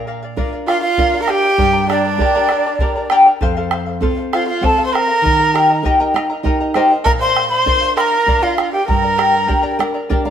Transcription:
Already playing: A#2
0.07 A#4 D5 F5
0.23 D5 F5
0.36 D4 F4 A#4 D5 F5, bombo low
0.53 D5 F5
0.67 F4 A#4 D5 F5, bombo rim
0.82 F4 D5 F5
0.98 D4 F4 A#4 D5 F5, bombo low
1.14 A#4 D5 F5
1.22 A#4 A#5
1.27 G4 A#4 D5 F5 G5, bombo rim
1.44 D5 F5, bombo rim
1.58 G2 A#4 D5 G5 A#5, bombo low
1.73 A#4 D5 A#5
1.89 D4 G4 A#4 D5 G5 A#5, bombo rim
2.05 A#4 D5 A#5
2.18 D4 G4 A#4 D5 G5 A#5, bombo low
2.35 G4 A#4 D5 G5 A#5
2.49 A#4 D5 G5 A#5, bombo rim
2.66 A#4 D5 A#5
2.79 D4 G4 A#4 D5 G5 A#5, bombo low
2.96 A#4 D5 A#5
3.10 G4 A#4 D5 G5 A#5, bombo rim
3.25 A#4 D5 A#5, bombo rim
3.41 F2 A4 C5 F5, bombo low
3.57 A4 C5 F5
3.71 A4 C5 F5, bombo rim
3.86 C5 F5
4.01 C4 F4 A4 C5 F5, bombo low
4.17 C5 F5
4.33 F4 A4 C5 F5, bombo rim
4.48 F4 C5 F5
4.61 C4 F4 A4 C5 F5 A5, bombo low
4.78 A4 C5 F5
4.86 C5 C6
4.93 A4 A#4 C5 F5 A#5, bombo rim
5.08 C5 F5, bombo rim
5.22 D#3 A#4 D#5 G5 A#5
5.26 bombo rim, bombo low
5.40 A#4 D#5 A#5
5.54 G4 A#4 D#5 G5 A#5, bombo rim
5.70 A#4 D#5 A#5
5.83 D#4 G4 A#4 D#5 G5 A#5, bombo low
6.00 G4 A#4 D#5 G5 A#5
6.14 A#4 D#5 F5 G5 A#5, bombo rim
6.30 A#4 D#5 A#5
6.43 D#4 G4 A#4 D#5 G5 A#5, bombo low
6.60 A#4 D#5 A#5
6.74 G4 A#4 C5 D#5 G5 A#5, bombo rim
6.91 A#4 D#5 A#5, bombo rim
7.04 A#2 A#4 D5 F5 A#5, bombo low
7.20 A#4 C5 D5 F5 C6
7.36 A#4 D5 F5, bombo rim
7.49 C5 F5 C6
7.53 D5
7.66 D4 F4 A#4 D5 F5, bombo low
7.81 D5 F5
7.96 A#4 D5 F5 C6, bombo rim
8.01 A#5
8.12 D5 F5
8.26 D4 F4 A#4 D5 F5, bombo low
8.42 F4 A#4 D5 F5
8.58 A#4 D5 F5, bombo rim
8.73 G4 D5 F5 G5, bombo rim
8.88 G2 A#4 D5 G5 A#5, bombo low
9.03 A#4 D5 A#5
9.18 G4 A#4 D5 G5 A#5, bombo rim
9.33 A#4 D5 A#5
9.47 D4 G4 A#4 D5 G5 A#5, bombo low
9.63 G4 A#4 D5 G5 A#5
9.79 A#4 D5 G5 A#5, bombo rim
9.94 A#4 D5 A#5
10.09 D4 G4 A#4 D5 G5 A#5, bombo low
10.25 A#4 D5 F5 A#5

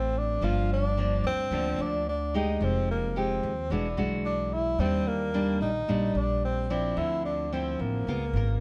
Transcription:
Already playing: A1 A2 A3 C4 F#4
0.18 D4
0.41 G1 G2 F3 A#3 D4 F4
0.73 D4
0.97 F3 A#3 D4
1.24 D2 C4
1.51 D2 D3 F3 A#3 D4
1.79 D2 D4
2.09 D4
2.34 G#3 D#4 G4
2.60 F1 F3 C4
2.91 A#3
3.16 G#3 C4 D#4 G4
3.43 D#2
3.70 E1 E3 G#3 D4 F#4
3.97 B1 G#3 D4 F#4
4.25 D4
4.54 E4
4.78 D#2 D#3 G3 A#3 C4 D4
5.08 A#3
5.34 G3 A#3 D4
5.61 A#1 D#4
5.88 A#1 A#2 G3 A#3 D4
6.15 A#1 D4
6.45 C4
6.70 F3 C4 D4 E4
6.97 D2 D3 E4
7.25 D4
7.53 F3 C4 E4
7.79 A1 A#3
8.07 C#2 C#3 B3 F4 A#4
8.33 G#1 F4 A#4

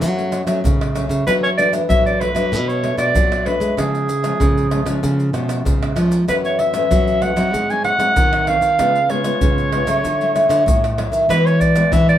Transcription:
Already playing: F#3 A3 C#4
0.01 F#2 F#3, pandeiro, maracas, surdo
0.17 F#3 A3 C#4, pandeiro, maracas
0.32 F#3 A3 C#4, pandeiro, tamborim, maracas
0.47 F#3 A3 C#4, pandeiro, tamborim, maracas
0.64 C#3, pandeiro, maracas, surdo
0.81 pandeiro, tamborim, maracas
0.95 F#3 A3 C#4, pandeiro, tamborim, maracas
1.09 C#3, pandeiro, maracas
1.26 F#2 E3 F#3 A3 D4 B4, pandeiro, tamborim, maracas, surdo
1.43 C#5, pandeiro, maracas
1.57 E3 A3 D4 D5, pandeiro, maracas
1.72 E3 A3 D4, pandeiro, tamborim, maracas
1.89 F#2 F#3 E5, pandeiro, maracas, surdo
2.06 D5, pandeiro, maracas
2.20 E3 A3 D4 B4, pandeiro, tamborim
2.35 F#3 A3 D4, pandeiro, tamborim, maracas
2.52 B2, pandeiro, maracas, surdo
2.68 C#5, pandeiro, maracas
2.83 F#3 A3 D4, pandeiro, tamborim
2.98 B2 D5, pandeiro, tamborim, maracas
3.15 F#2 F#3, pandeiro, maracas, surdo
3.32 pandeiro, tamborim, maracas
3.45 F#3 A3 D4 B4, pandeiro, tamborim
3.60 G#3, pandeiro, maracas
3.77 C#3 F3 G#3 C#4 G#4, pandeiro, tamborim, maracas, surdo
3.95 pandeiro, maracas
4.09 pandeiro, maracas
4.23 F3 G#3 C#4, pandeiro, tamborim, maracas
4.40 G#2 C#3, pandeiro, maracas, surdo
4.57 pandeiro, maracas
4.71 F3 G#3 C#4, pandeiro, tamborim
4.86 C#3 F3 G#3 C#4, pandeiro, tamborim, maracas
5.03 C#3, pandeiro, maracas, surdo
5.20 pandeiro, maracas
5.33 B2 F3 G#3 C#4, pandeiro, tamborim, maracas
5.49 pandeiro, tamborim, maracas
5.65 G#2 C#3, pandeiro, maracas, surdo
5.83 pandeiro, tamborim, maracas
5.96 F3 G#3 C#4, pandeiro, tamborim, maracas
6.12 pandeiro, maracas
6.28 F#2 E3 F#3 A3 C#4 B4, pandeiro, tamborim, maracas, surdo
6.45 C#5, pandeiro, maracas
6.59 E5, pandeiro
6.74 E3 A3 C#4, pandeiro, tamborim, maracas
6.91 C#3 F#3, pandeiro, maracas, surdo
7.08 pandeiro, maracas
7.22 E3 A3 C#4 F#5, pandeiro, tamborim
7.36 F#3 C4 D#4, pandeiro, tamborim, maracas
7.53 G#2 G#3, pandeiro, maracas, surdo
7.70 F#3 C4 D#4 G#5, pandeiro, maracas
7.84 F#3 C4 D#4 F#5, pandeiro, tamborim
7.99 F#3 G#3 C4 D#4, pandeiro, tamborim, maracas
8.16 D#3, pandeiro, maracas, surdo
8.33 pandeiro, tamborim, maracas
8.47 F#3 C4 D#4 F5, pandeiro, tamborim
8.61 D#3, pandeiro, maracas
8.79 C#3 G#3 B3 F4, pandeiro, tamborim, maracas, surdo
8.95 pandeiro, maracas
9.10 G#3 B3 F4 C#5, pandeiro
9.24 G#3 B3 F4, pandeiro, tamborim, maracas
9.41 G#2 C#3, pandeiro, maracas, surdo
9.58 pandeiro, maracas
9.72 G#3 B3 F4, pandeiro, tamborim
9.87 C#3 F#3 A3 E4, pandeiro, tamborim, maracas
10.04 D3, pandeiro, maracas, surdo
10.21 F#3 A3 E4, pandeiro, maracas
10.35 F#3 A3 E4, pandeiro, tamborim, maracas
10.49 D3, pandeiro, tamborim, maracas
10.66 A2, pandeiro, maracas, surdo
10.84 pandeiro, tamborim, maracas
10.98 F#3 A3 E4, pandeiro, tamborim
11.12 D#3, pandeiro, maracas
11.29 E3 G#3 B3 F#4 B4, pandeiro, tamborim, maracas, surdo
11.46 C#5, pandeiro, maracas
11.60 D5, pandeiro, maracas, surdo
11.75 G#3 B3 F#4, pandeiro, tamborim, maracas
11.92 B2 E3 E5, pandeiro, maracas, surdo
12.09 D5, pandeiro, maracas

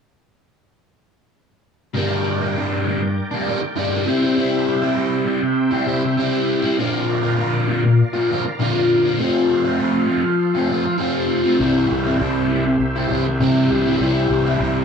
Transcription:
1.93 G2 D3 G3 A#3 D4 A#4 D5 G5
2.40 G3 A#3 D4
2.56 G2 D3 G3 A#3 D4
2.86 D3 G3 A#3 D4
3.02 muted overdriven electric guitar stroke
3.31 G3 A#3 D4
3.45 D3 G3 A#3
3.50 D4
3.62 muted overdriven electric guitar stroke
3.75 G2 D3 G3 A#3 D4
4.05 C3 G3 C4 E4 C5 E5
4.23 G3 C4 E4
4.36 C3 G3 C4
4.40 E4
4.82 G3 C4 E4
4.96 C3 G3 C4 E4
5.26 C3 G3 C4 E4
5.42 muted overdriven electric guitar stroke
5.71 G3 C4 E4
5.86 C3 G3 C4 E4
6.04 muted overdriven electric guitar stroke
6.17 C3 G3 C4 E4
6.62 G3 C4 E4
6.76 A#2 D3 F3 A#3 A#4 D5 F5
6.80 F4
7.23 F3 A#3 F4
7.38 A#2 D3 F3 A#3 F4
7.67 D3 F3 A#3 F4
7.85 muted overdriven electric guitar stroke
8.13 F3 A#3 F4
8.30 D3 F3 A#3 F4
8.45 muted overdriven electric guitar stroke
8.59 A#2 D3 F3 A#3 F4
9.04 F3 A#3 F4
9.18 F3 A3 C4 F4 A4 C5
9.64 A3 C4 F4
9.79 F3 A3 C4 F4
10.08 F3 A3 C4 F4
10.24 muted overdriven electric guitar stroke
10.54 A3 C4 F4
10.69 F3 A3 C4 F4
10.85 muted overdriven electric guitar stroke
10.98 F3 A3 C4 F4
11.44 A3 C4 F4
11.58 C2 C3 E3 G3 C4 G4 C5 E5
11.62 E4
11.90 C2
12.05 G3 C4 E4
12.19 C2 C3 E3 G3 C4 E4
12.50 E3 G3 C4 E4
12.65 muted overdriven electric guitar stroke
12.80 C2
12.96 G3 C4 E4
13.11 C2 E3 G3 C4 E4
13.27 muted overdriven electric guitar stroke
13.40 C3 E3 G3 C4 E4
13.70 C2
13.86 G3 C4 E4
14.00 C2 C3 E3 G3 C4
14.05 E4
14.30 C2
14.46 G3 C4 E4
14.60 C2 C3 E3 G3 C4 E4

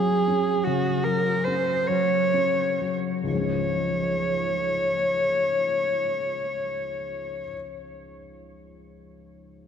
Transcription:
Already playing: F#3 C#4 G#4
0.28 C#4
0.64 C#3 F#4
1.03 F#3 A#4
1.44 C#4 C5
1.88 F#3 C#5
2.34 C#4
2.80 F#3
3.24 C#2 G#2
3.29 F3 G#3 C#5
3.36 C#4 G#4

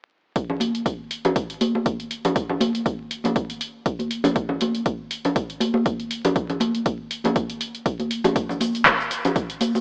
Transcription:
0.36 kick, closed hi-hat
0.50 low conga
0.60 open hi-hat, high conga
0.75 closed hi-hat
0.86 kick, closed hi-hat
1.11 open hi-hat
1.25 closed hi-hat, low conga
1.36 kick, closed hi-hat
1.50 closed hi-hat
1.61 open hi-hat, high conga
1.75 high conga
1.86 kick, closed hi-hat
2.00 closed hi-hat
2.11 open hi-hat
2.25 closed hi-hat, low conga
2.36 kick, closed hi-hat
2.50 low conga
2.61 open hi-hat, high conga
2.75 closed hi-hat
2.86 kick, closed hi-hat
3.11 open hi-hat
3.24 closed hi-hat, high conga, low conga
3.36 kick, closed hi-hat
3.50 closed hi-hat
3.61 open hi-hat
3.86 kick, closed hi-hat
3.99 closed hi-hat, high conga
4.11 open hi-hat
4.24 closed hi-hat, high conga, low conga
4.36 kick, closed hi-hat
4.49 low conga
4.61 open hi-hat, high conga
4.75 closed hi-hat
4.86 kick, closed hi-hat
5.11 open hi-hat
5.25 closed hi-hat, low conga
5.36 kick, closed hi-hat
5.50 closed hi-hat
5.60 open hi-hat, high conga
5.74 high conga
5.86 kick, closed hi-hat
6.00 closed hi-hat
6.11 open hi-hat
6.25 closed hi-hat, low conga
6.36 kick, closed hi-hat
6.50 closed hi-hat, low conga
6.60 open hi-hat, high conga
6.75 closed hi-hat
6.86 kick, closed hi-hat
7.11 open hi-hat
7.24 closed hi-hat, high conga, low conga
7.36 kick, closed hi-hat
7.50 closed hi-hat
7.61 open hi-hat
7.75 closed hi-hat
7.86 kick, closed hi-hat
8.00 closed hi-hat, high conga
8.11 open hi-hat
8.24 closed hi-hat, high conga, low conga
8.36 kick, closed hi-hat, shaker
8.49 low conga, shaker
8.60 open hi-hat, high conga, shaker
8.75 closed hi-hat, shaker
8.85 kick, clap, closed hi-hat, shaker
9.01 shaker
9.11 open hi-hat, shaker
9.25 closed hi-hat, low conga, shaker
9.36 kick, closed hi-hat, shaker
9.50 closed hi-hat, shaker
9.61 open hi-hat, high conga, shaker
9.75 high conga, shaker

